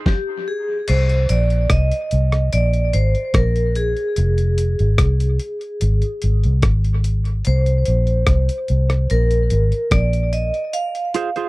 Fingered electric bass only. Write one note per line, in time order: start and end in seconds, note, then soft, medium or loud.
0.89 1.27 C2 loud
1.30 1.68 A#1 medium
1.71 1.91 C2 medium
2.13 2.50 C2 medium
2.54 2.92 A#1 medium
2.94 3.14 G#1 medium
3.35 3.93 A#1 medium
4.18 4.76 F1 loud
4.80 4.98 G#1 medium
4.99 5.38 C2 medium
5.82 6.01 G#1 loud
6.24 6.43 G#1 medium
6.45 6.63 C2 medium
6.63 7.41 G#1 loud
7.47 7.85 C2 loud
7.88 8.26 A#1 medium
8.28 8.48 C2 loud
8.70 9.08 C2 medium
9.11 9.49 A#1 loud
9.52 9.71 G#1 loud
9.92 10.50 A#1 medium